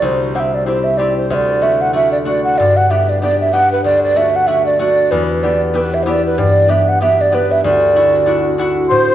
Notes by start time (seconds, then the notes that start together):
Already playing: A3 D4 E4 F#4
0.02 C2 C5
0.35 C4 E4 G4 F#5
0.40 E5
0.54 D5
0.66 C4 E4 G4 C5
0.84 E5
0.97 C4 E4 G4 D5
1.17 C5
1.30 D2 E5
1.34 D5
1.61 A3 D4 F#4 E5
1.81 F#5
1.93 A3 D4 F#4 E5
2.12 D5
2.25 A3 D4 F#4 D5
2.44 F#5
2.58 G2 D5
2.77 F#5
2.86 B3 F#5
2.90 D4 G4 E5
3.09 D5
3.22 B3 D4 G4 D5
3.40 E5
3.53 B3 D4 G4 F#5
3.72 B4
3.84 D2 D5
4.03 D5
4.16 A3 D4 F#4 E5
4.36 F#5
4.47 A3 D4 F#4 E5
4.66 D5
4.79 A3 D4 F#4 D5
5.11 E2 B4
5.43 B3 E4 G4 D5
5.74 B3 E4 G4 B4
5.94 E5
6.03 B3 E4 G4 C5
6.09 D5
6.26 B4
6.38 G2 D5
6.68 B3 D4 G4 E5
6.89 F#5
7.01 B3 D4 G4 E5
7.21 D5
7.32 B3 D4 G4 B4
7.51 E5
7.64 D2 D5
7.95 D4 E4 F#4
8.26 D4 E4 F#4
8.58 D4 E4 F#4
8.88 A2 C5